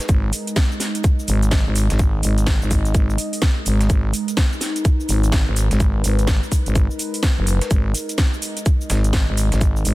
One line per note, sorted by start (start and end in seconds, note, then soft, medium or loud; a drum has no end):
0.00 9.94 G#3 medium
0.00 9.94 D#4 medium
0.00 9.94 A#4 medium
0.00 cabasa soft
0.09 0.31 G#1 medium
0.09 3.89 D#5 medium
0.09 kick loud
0.09 closed hi-hat medium
0.09 cabasa soft
0.09 shaker medium
0.33 open hi-hat loud
0.33 cabasa medium
0.33 shaker medium
0.47 closed hi-hat medium
0.47 cabasa soft
0.56 kick loud
0.56 snare loud
0.56 closed hi-hat medium
0.56 cabasa soft
0.56 shaker medium
0.72 cabasa soft
0.80 snare soft
0.80 open hi-hat loud
0.80 cabasa medium
0.80 shaker medium
0.95 closed hi-hat medium
0.95 cabasa soft
1.04 kick loud
1.04 closed hi-hat medium
1.04 cabasa soft
1.04 shaker medium
1.19 cabasa soft
1.28 1.64 G#1 loud
1.28 open hi-hat loud
1.28 cabasa medium
1.28 shaker medium
1.43 closed hi-hat medium
1.43 cabasa soft
1.51 kick loud
1.51 snare loud
1.51 closed hi-hat medium
1.51 cabasa soft
1.51 shaker medium
1.66 1.88 G#1 loud
1.76 open hi-hat loud
1.76 cabasa medium
1.76 shaker medium
1.90 2.22 G#1 medium
1.90 snare medium
1.90 closed hi-hat medium
1.90 cabasa soft
1.99 kick loud
1.99 closed hi-hat medium
1.99 cabasa soft
1.99 shaker medium
2.23 2.59 G#1 medium
2.23 open hi-hat loud
2.23 cabasa medium
2.23 shaker medium
2.38 closed hi-hat medium
2.38 cabasa soft
2.47 kick loud
2.47 snare loud
2.47 closed hi-hat medium
2.47 cabasa soft
2.47 shaker medium
2.62 2.93 G#1 loud
2.62 cabasa soft
2.71 kick medium
2.71 open hi-hat loud
2.71 cabasa medium
2.71 shaker medium
2.85 closed hi-hat soft
2.85 cabasa soft
2.94 3.17 G#1 medium
2.94 kick loud
2.94 closed hi-hat medium
2.94 cabasa soft
2.94 shaker medium
3.10 cabasa soft
3.18 open hi-hat loud
3.18 cabasa medium
3.18 shaker medium
3.33 open hi-hat medium
3.33 cabasa soft
3.42 kick loud
3.42 snare loud
3.42 closed hi-hat medium
3.42 cabasa soft
3.42 shaker medium
3.66 3.88 G#1 loud
3.66 open hi-hat loud
3.66 cabasa medium
3.66 shaker medium
3.81 snare medium
3.81 closed hi-hat medium
3.81 cabasa soft
3.90 4.12 G#1 loud
3.90 7.70 B4 medium
3.90 kick loud
3.90 closed hi-hat medium
3.90 cabasa soft
3.90 shaker medium
4.13 open hi-hat loud
4.13 cabasa medium
4.13 shaker medium
4.28 closed hi-hat soft
4.28 cabasa soft
4.37 kick loud
4.37 snare loud
4.37 closed hi-hat medium
4.37 cabasa soft
4.37 shaker medium
4.53 cabasa soft
4.61 snare soft
4.61 open hi-hat loud
4.61 cabasa medium
4.61 shaker medium
4.76 closed hi-hat medium
4.76 cabasa soft
4.85 kick loud
4.85 closed hi-hat medium
4.85 cabasa soft
4.85 shaker medium
5.00 cabasa soft
5.09 5.45 G#1 loud
5.09 open hi-hat loud
5.09 cabasa medium
5.09 shaker medium
5.23 closed hi-hat soft
5.23 cabasa soft
5.32 kick loud
5.32 snare loud
5.32 closed hi-hat medium
5.32 cabasa soft
5.32 shaker medium
5.47 5.69 G#1 loud
5.56 open hi-hat loud
5.56 cabasa medium
5.56 shaker medium
5.71 6.03 G#1 loud
5.71 snare medium
5.71 closed hi-hat medium
5.71 cabasa soft
5.80 kick loud
5.80 closed hi-hat medium
5.80 cabasa soft
5.80 shaker medium
6.04 6.40 G#1 loud
6.04 open hi-hat loud
6.04 cabasa medium
6.04 shaker medium
6.19 closed hi-hat medium
6.19 cabasa soft
6.27 kick loud
6.27 snare loud
6.27 closed hi-hat medium
6.27 cabasa soft
6.27 shaker medium
6.43 cabasa soft
6.52 kick medium
6.52 open hi-hat loud
6.52 cabasa medium
6.52 shaker medium
6.66 6.88 G#1 loud
6.66 closed hi-hat medium
6.66 cabasa soft
6.75 kick loud
6.75 closed hi-hat medium
6.75 cabasa soft
6.75 shaker medium
6.91 cabasa soft
6.99 open hi-hat loud
6.99 cabasa medium
6.99 shaker medium
7.14 open hi-hat medium
7.14 cabasa soft
7.23 kick loud
7.23 snare loud
7.23 closed hi-hat medium
7.23 cabasa soft
7.23 shaker medium
7.38 7.59 F#1 loud
7.47 open hi-hat loud
7.47 cabasa medium
7.47 shaker medium
7.61 snare medium
7.61 closed hi-hat medium
7.61 cabasa soft
7.71 7.93 G#1 loud
7.71 9.94 D#5 medium
7.71 kick loud
7.71 closed hi-hat medium
7.71 cabasa soft
7.71 shaker medium
7.94 open hi-hat loud
7.94 cabasa medium
7.94 shaker medium
8.09 closed hi-hat medium
8.09 cabasa soft
8.18 kick loud
8.18 snare loud
8.18 closed hi-hat medium
8.18 cabasa soft
8.18 shaker medium
8.34 cabasa soft
8.42 open hi-hat loud
8.42 cabasa medium
8.42 shaker medium
8.57 closed hi-hat medium
8.57 cabasa soft
8.66 kick loud
8.66 closed hi-hat medium
8.66 cabasa soft
8.66 shaker medium
8.81 cabasa soft
8.90 9.26 G#1 loud
8.90 snare loud
8.90 open hi-hat loud
8.90 cabasa medium
8.90 shaker medium
9.04 closed hi-hat medium
9.04 cabasa soft
9.13 kick loud
9.13 snare loud
9.13 closed hi-hat medium
9.13 cabasa soft
9.13 shaker medium
9.28 9.50 G#1 medium
9.37 open hi-hat loud
9.37 cabasa medium
9.37 shaker medium
9.52 9.83 G#1 loud
9.52 snare medium
9.52 closed hi-hat medium
9.52 cabasa soft
9.61 kick loud
9.61 closed hi-hat medium
9.61 cabasa soft
9.61 shaker medium
9.76 cabasa soft
9.85 9.94 G#1 loud
9.85 open hi-hat loud
9.85 cabasa medium
9.85 shaker medium